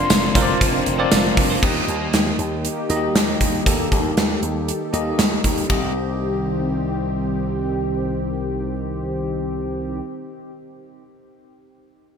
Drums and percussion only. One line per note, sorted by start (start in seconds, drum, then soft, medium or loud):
0.10 snare loud
0.10 closed hi-hat medium
0.10 tambourine medium
0.35 kick medium
0.35 closed hi-hat medium
0.61 kick loud
0.61 closed hi-hat medium
0.86 closed hi-hat medium
1.12 snare loud
1.12 closed hi-hat medium
1.12 tambourine medium
1.37 kick medium
1.37 open hi-hat medium
1.63 kick loud
1.63 crash medium
1.88 closed hi-hat soft
2.13 snare loud
2.13 closed hi-hat medium
2.39 closed hi-hat medium
2.65 closed hi-hat medium
2.90 closed hi-hat medium
3.15 snare loud
3.15 closed hi-hat medium
3.41 kick medium
3.41 closed hi-hat medium
3.66 kick loud
3.66 closed hi-hat medium
3.92 kick medium
3.92 closed hi-hat soft
4.17 snare loud
4.17 closed hi-hat medium
4.43 closed hi-hat medium
4.68 closed hi-hat medium
4.94 closed hi-hat medium
5.19 snare medium
5.19 closed hi-hat medium
5.44 kick medium
5.44 closed hi-hat medium
5.57 closed hi-hat soft
5.70 kick medium
5.70 ride medium